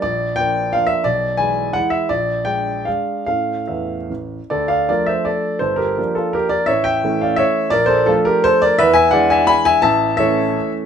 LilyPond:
<<
  \new Staff \with { instrumentName = "Grand piano" } { \time 3/4 \key d \minor \tempo 4 = 169 d''4 g''4 f''8 e''8 | d''4 gis''4 fis''8 e''8 | d''4 g''4 f''4 | f''4 e''4 r4 |
<a' d''>8 <d'' f''>8 <bes' d''>8 <c'' e''>8 <a' d''>4 | <a' c''>8 <g' bes'>4 <f' a'>8 <g' bes'>8 <bes' d''>8 | <cis'' e''>8 <e'' g''>4 <d'' f''>8 <cis'' e''>4 | <bes' d''>8 <a' c''>8 <f' a'>8 <g' bes'>8 <a' c''>8 <bes' d''>8 |
<b' e''>8 <e'' gis''>8 <d'' fis''>8 <e'' gis''>8 <gis'' b''>8 <e'' gis''>8 | <e'' a''>4 <cis'' e''>4. r8 | }
  \new Staff \with { instrumentName = "Grand piano" } { \clef bass \time 3/4 \key d \minor bes,,4 <f bes d'>4 <f bes d'>4 | b,,4 <e gis e'>4 <e gis e'>4 | bes,,4 <aes d'>4 <aes d'>4 | <a, a cis'>4 e,4 a,,4 |
d,4 <f a d'>2 | g,,4 <f bes d'>2 | a,,4 <e a cis'>2 | bes,,4 <f a d'>2 |
e,4 <e gis d'>2 | a,,4 <e a cis'>2 | }
>>